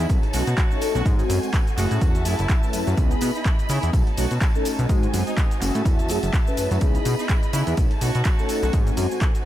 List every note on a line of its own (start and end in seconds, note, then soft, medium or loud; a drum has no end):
0.09 0.19 B1 medium
0.09 0.23 A3 medium
0.09 1.04 D#4 medium
0.09 1.05 C#5 medium
0.09 1.04 A5 medium
0.09 kick loud
0.09 closed hi-hat medium
0.09 tambourine medium
0.09 shaker soft
0.23 closed hi-hat soft
0.23 tambourine soft
0.33 0.43 B1 medium
0.33 0.42 A3 medium
0.33 0.42 C#4 medium
0.33 0.43 D#4 medium
0.33 0.92 F#4 loud
0.33 0.43 F#4 loud
0.33 open hi-hat loud
0.33 tambourine loud
0.33 shaker medium
0.47 0.55 B2 medium
0.47 closed hi-hat medium
0.47 tambourine soft
0.47 shaker soft
0.58 kick loud
0.58 clap loud
0.58 closed hi-hat medium
0.58 tambourine medium
0.58 shaker soft
0.71 1.03 A3 medium
0.71 1.03 C#4 medium
0.71 1.03 D#4 medium
0.71 1.03 A4 loud
0.71 tambourine soft
0.71 shaker soft
0.81 open hi-hat loud
0.81 tambourine medium
0.81 shaker medium
0.95 1.03 B1 medium
0.95 1.11 F#4 loud
0.95 closed hi-hat soft
0.95 tambourine soft
0.95 shaker soft
1.05 1.23 G#2 loud
1.05 1.40 C4 medium
1.05 1.40 D#4 medium
1.05 2.96 F#4 medium
1.05 1.40 F#4 loud
1.05 1.77 C5 medium
1.05 1.77 G#5 medium
1.05 kick loud
1.05 closed hi-hat medium
1.05 tambourine medium
1.05 shaker soft
1.19 closed hi-hat soft
1.19 tambourine soft
1.19 shaker soft
1.29 1.39 F#2 loud
1.29 open hi-hat loud
1.29 tambourine loud
1.29 shaker medium
1.43 1.50 G#3 medium
1.43 1.50 C4 medium
1.43 1.50 D#4 medium
1.43 1.50 F#4 medium
1.43 closed hi-hat soft
1.43 tambourine soft
1.43 shaker soft
1.53 kick loud
1.53 clap loud
1.53 closed hi-hat medium
1.53 tambourine medium
1.53 shaker soft
1.67 closed hi-hat soft
1.67 tambourine soft
1.67 shaker soft
1.77 1.87 F#1 loud
1.77 1.99 A3 loud
1.77 1.99 C#4 medium
1.77 1.99 E4 medium
1.77 2.24 F#4 loud
1.77 1.99 G#4 loud
1.77 2.96 E5 medium
1.77 2.96 A5 medium
1.77 clap soft
1.77 open hi-hat medium
1.77 tambourine loud
1.77 shaker medium
1.91 1.99 A2 medium
1.91 closed hi-hat medium
1.91 tambourine soft
1.91 shaker soft
2.01 2.27 E2 medium
2.01 kick loud
2.01 closed hi-hat medium
2.01 tambourine medium
2.01 shaker soft
2.15 closed hi-hat soft
2.15 tambourine soft
2.15 shaker soft
2.25 2.35 F#2 medium
2.25 2.34 A3 medium
2.25 2.34 C#4 medium
2.25 2.73 E4 medium
2.25 2.34 E4 medium
2.25 2.35 G#4 loud
2.25 open hi-hat loud
2.25 tambourine loud
2.25 shaker medium
2.39 2.47 F#1 medium
2.39 closed hi-hat soft
2.39 tambourine soft
2.39 shaker soft
2.49 kick loud
2.49 clap loud
2.49 closed hi-hat medium
2.49 tambourine medium
2.49 shaker soft
2.63 2.95 A3 medium
2.63 2.95 C#4 medium
2.63 2.95 E4 medium
2.63 2.95 B4 loud
2.63 tambourine soft
2.63 shaker soft
2.73 2.84 F#2 soft
2.73 open hi-hat medium
2.73 tambourine loud
2.73 shaker medium
2.87 2.95 F#2 loud
2.87 closed hi-hat soft
2.87 tambourine soft
2.87 shaker soft
2.97 3.15 C#2 loud
2.97 3.32 B3 medium
2.97 3.32 D#4 medium
2.97 3.32 E4 medium
2.97 3.32 G#4 loud
2.97 3.93 D#5 medium
2.97 3.93 B5 medium
2.97 kick loud
2.97 closed hi-hat medium
2.97 tambourine medium
2.97 shaker soft
3.10 closed hi-hat soft
3.10 tambourine soft
3.10 shaker soft
3.21 3.31 B2 loud
3.21 open hi-hat loud
3.21 tambourine loud
3.21 shaker medium
3.34 3.41 B3 medium
3.34 3.42 D#4 medium
3.34 3.42 E4 medium
3.34 3.54 E4 medium
3.34 3.42 G#4 medium
3.34 tambourine soft
3.34 shaker soft
3.45 kick loud
3.45 clap loud
3.45 closed hi-hat medium
3.45 tambourine medium
3.45 shaker soft
3.59 closed hi-hat soft
3.59 tambourine soft
3.59 shaker soft
3.69 3.79 C#3 loud
3.69 3.91 B3 loud
3.69 3.91 D#4 medium
3.69 3.91 E4 medium
3.69 3.90 E4 medium
3.69 3.91 G#4 loud
3.69 open hi-hat medium
3.69 tambourine loud
3.69 shaker medium
3.82 3.90 E2 medium
3.82 closed hi-hat medium
3.82 tambourine soft
3.82 shaker soft
3.93 4.03 B1 medium
3.93 4.07 A3 medium
3.93 4.88 D#4 medium
3.93 4.08 F#4 medium
3.93 4.88 C#5 medium
3.93 4.88 A5 medium
3.93 kick loud
3.93 closed hi-hat medium
3.93 tambourine medium
3.93 shaker soft
4.07 closed hi-hat soft
4.07 tambourine soft
4.17 4.27 B1 medium
4.17 4.26 A3 loud
4.17 4.26 C#4 medium
4.17 4.26 D#4 medium
4.17 4.38 F#4 medium
4.17 4.26 F#4 loud
4.17 open hi-hat loud
4.17 tambourine loud
4.17 shaker medium
4.30 4.38 B2 medium
4.30 closed hi-hat medium
4.30 tambourine soft
4.30 shaker soft
4.41 kick loud
4.41 clap loud
4.41 closed hi-hat medium
4.41 tambourine medium
4.41 shaker soft
4.54 4.87 A3 medium
4.54 4.87 C#4 medium
4.54 4.87 D#4 medium
4.54 4.87 A4 loud
4.54 tambourine soft
4.54 shaker soft
4.65 open hi-hat medium
4.65 tambourine medium
4.65 shaker medium
4.79 4.86 B1 loud
4.79 closed hi-hat soft
4.79 tambourine soft
4.79 shaker soft
4.89 5.07 G#2 loud
4.89 5.24 G#3 medium
4.89 5.24 C4 medium
4.89 6.79 F#4 medium
4.89 5.24 F#4 loud
4.89 5.61 C5 medium
4.89 5.61 G#5 medium
4.89 kick loud
4.89 closed hi-hat medium
4.89 tambourine soft
4.89 shaker soft
5.02 closed hi-hat soft
5.02 tambourine soft
5.02 shaker soft
5.14 5.23 F#2 loud
5.14 open hi-hat loud
5.14 tambourine medium
5.14 shaker medium
5.27 5.34 G#3 medium
5.27 5.34 C4 medium
5.27 5.34 D#4 medium
5.27 5.62 D#4 medium
5.27 5.34 F#4 medium
5.27 closed hi-hat soft
5.27 tambourine soft
5.27 shaker soft
5.37 kick loud
5.37 clap loud
5.37 closed hi-hat medium
5.37 tambourine medium
5.37 shaker soft
5.51 closed hi-hat soft
5.51 tambourine soft
5.51 shaker soft
5.61 5.71 F#1 loud
5.61 5.83 A3 loud
5.61 5.83 C#4 medium
5.61 5.83 E4 medium
5.61 5.83 G#4 loud
5.61 6.80 E5 medium
5.61 6.81 A5 medium
5.61 clap soft
5.61 open hi-hat medium
5.61 tambourine medium
5.61 shaker medium
5.74 5.82 A2 medium
5.74 closed hi-hat medium
5.74 tambourine soft
5.74 shaker soft
5.85 6.11 E2 medium
5.85 5.99 A3 medium
5.85 6.00 F#4 medium
5.85 kick loud
5.85 closed hi-hat medium
5.85 tambourine medium
5.85 shaker soft
5.99 closed hi-hat soft
5.99 tambourine soft
5.99 shaker soft
6.08 6.19 F#2 medium
6.08 6.18 A3 medium
6.08 6.18 C#4 medium
6.08 6.18 E4 medium
6.08 6.18 G#4 loud
6.08 open hi-hat loud
6.08 tambourine medium
6.08 shaker medium
6.23 6.30 F#1 medium
6.23 closed hi-hat medium
6.23 tambourine soft
6.23 shaker soft
6.33 kick loud
6.33 clap loud
6.33 closed hi-hat medium
6.33 tambourine soft
6.33 shaker soft
6.47 6.79 A3 loud
6.47 6.79 C#4 medium
6.47 6.79 E4 medium
6.47 6.79 B4 loud
6.47 tambourine soft
6.47 shaker soft
6.57 6.68 F#2 soft
6.57 open hi-hat medium
6.57 tambourine medium
6.57 shaker medium
6.71 6.79 F#2 loud
6.71 closed hi-hat soft
6.71 tambourine soft
6.71 shaker soft
6.81 6.99 C#2 loud
6.81 7.16 G#4 loud
6.81 7.76 D#5 medium
6.81 7.76 B5 medium
6.81 kick loud
6.81 closed hi-hat medium
6.81 tambourine medium
6.81 shaker soft
6.95 closed hi-hat soft
6.95 tambourine soft
6.95 shaker soft
7.05 7.15 B2 loud
7.05 open hi-hat loud
7.05 tambourine medium
7.05 shaker medium
7.19 7.26 B3 medium
7.19 7.26 D#4 medium
7.19 7.26 E4 medium
7.19 7.38 E4 medium
7.19 7.26 G#4 medium
7.19 tambourine soft
7.19 shaker soft
7.29 kick loud
7.29 clap loud
7.29 closed hi-hat medium
7.29 tambourine medium
7.29 shaker soft
7.43 closed hi-hat soft
7.43 tambourine soft
7.43 shaker soft
7.53 7.63 C#3 loud
7.53 7.75 B3 loud
7.53 7.75 D#4 medium
7.53 7.74 E4 medium
7.53 7.75 E4 medium
7.53 7.75 G#4 loud
7.53 open hi-hat medium
7.53 tambourine medium
7.53 shaker medium
7.67 7.74 E2 medium
7.67 closed hi-hat medium
7.67 tambourine soft
7.67 shaker soft
7.77 7.87 B1 medium
7.77 7.91 A3 medium
7.77 8.72 D#4 medium
7.77 7.92 D#4 medium
7.77 8.72 C#5 medium
7.77 8.72 A5 medium
7.77 kick loud
7.77 closed hi-hat medium
7.77 tambourine medium
7.77 shaker soft
7.91 closed hi-hat soft
7.91 tambourine soft
8.01 8.11 B1 medium
8.01 8.10 A3 loud
8.01 8.10 C#4 medium
8.01 8.10 D#4 medium
8.01 8.61 F#4 medium
8.01 8.11 F#4 loud
8.01 open hi-hat loud
8.01 tambourine medium
8.01 shaker medium
8.15 8.22 B2 medium
8.15 closed hi-hat medium
8.15 tambourine soft
8.15 shaker soft
8.24 kick loud
8.24 clap loud
8.24 closed hi-hat medium
8.24 tambourine soft
8.24 shaker soft
8.39 8.71 A3 loud
8.39 8.71 C#4 medium
8.39 8.71 D#4 medium
8.39 8.71 A4 loud
8.39 tambourine soft
8.39 shaker soft
8.49 open hi-hat medium
8.49 tambourine medium
8.49 shaker medium
8.63 8.70 B1 loud
8.63 8.79 F#4 medium
8.63 closed hi-hat soft
8.63 tambourine soft
8.63 shaker soft
8.73 8.91 G#2 loud
8.73 9.08 G#3 medium
8.73 9.08 D#4 medium
8.73 9.45 F#4 medium
8.73 9.45 C5 medium
8.73 9.45 G#5 medium
8.73 kick loud
8.73 closed hi-hat medium
8.73 tambourine soft
8.73 shaker soft
8.87 closed hi-hat soft
8.87 tambourine soft
8.87 shaker soft
8.97 9.07 F#2 loud
8.97 open hi-hat loud
8.97 tambourine medium
8.97 shaker medium
9.11 9.18 G#3 medium
9.11 9.18 C4 medium
9.11 9.18 D#4 medium
9.11 9.18 F#4 medium
9.11 tambourine soft
9.11 shaker soft
9.21 kick loud
9.21 clap loud
9.21 closed hi-hat medium
9.21 tambourine medium
9.21 shaker soft
9.35 closed hi-hat soft
9.35 tambourine soft
9.35 shaker soft